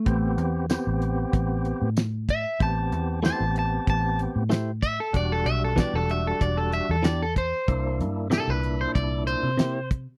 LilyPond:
<<
  \new Staff \with { instrumentName = "Clean electric guitar" } { \time 4/4 \key a \dorian \tempo 4 = 94 a8 r2. e''8 | a''4 a''8 a''8 a''8 r4 e''16 a'16 | d''16 a'16 e''16 a'16 d''16 a'16 e''16 a'16 d''16 a'16 e''16 a'16 d''16 a'16 c''8~ | c''8 r8 a'16 b'8 c''16 d''8 c''4 r8 | }
  \new Staff \with { instrumentName = "Clean electric guitar" } { \time 4/4 \key a \dorian r1 | r4 <a e' g' c''>8 r4. <a e' g' c''>8 r8 | r4 <e b d' g'>8 r4. <e b d' g'>8 r8 | r4 <c bes e' g'>8 r4. <c bes e' g'>8 r8 | }
  \new Staff \with { instrumentName = "Tonewheel organ" } { \time 4/4 \key a \dorian <b c' g'>4 <b c' g'>2 r4 | <b c' g'>4 <b c' g'>2 r4 | <g d' fis'>4 <g d' fis'>2 r4 | <bes d' e'>4 <bes, d' e'>2 r4 | }
  \new Staff \with { instrumentName = "Fingered electric bass" } { \clef bass \time 4/4 \key a \dorian a,,8 e,8. a,,8. a,,8. a,4~ a,16 | a,,8 e,8. a,,8. a,,8. a,4~ a,16 | e,,8 b,,8. e,,8. e,,8. e,4~ e,16 | c,8 g,8. c,8. c,8. c4~ c16 | }
  \new DrumStaff \with { instrumentName = "Drums" } \drummode { \time 4/4 <hh bd>8 hh8 <hh sn tamb>8 hh8 <hh bd>8 hh8 <hh sn tamb>8 <hh bd>8 | <hh bd>8 hh8 <hh sn tamb>8 hh8 <hh bd>8 hh8 <hh sn tamb>8 <hh bd>8 | <hh bd>8 hh8 <hh bd sn tamb>8 hh8 <hh bd>8 hh8 <hh sn tamb>8 <hh bd>8 | <hh bd>8 hh8 <hh sn tamb>8 hh8 <hh bd>8 hh8 <hh sn tamb>8 <hh bd>8 | }
>>